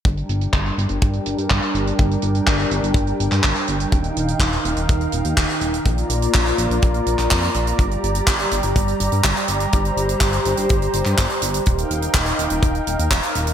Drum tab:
HH |xxxxxxxxxxxxxxxx|xxxxxxxxxxxxxxxx|xxxxxxxxxxxxxxxx|xxxxxxxxxxxxxxxx|
CP |----x-------x---|----x------xx---|----x-------x---|----x------xx---|
BD |o---o---o---o---|o---o---o---o---|o---o---o---o---|o---o---o---o---|

HH |xxxxxxxxxxxxxxxx|xxxxxxxxxxxxxxxx|xxxxxxxxxxxxxxxx|
CP |----x-------x---|----x------xx---|----x-------x---|
BD |o---o---o---o---|o---o---o---o---|o---o---o---o---|